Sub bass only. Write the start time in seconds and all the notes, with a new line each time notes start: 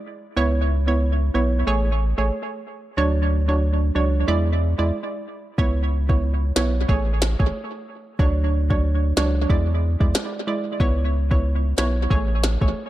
0.37 C#2
1.35 B1
1.67 A1
2.18 A1
2.98 D2
3.95 C#2
4.28 E2
4.79 E2
5.58 C#2
6.56 B1
6.89 A1
7.40 A1
8.19 D2
9.17 C#2
9.50 E2
10.01 E2
10.80 C#2
11.78 B1
12.11 A1
12.62 A1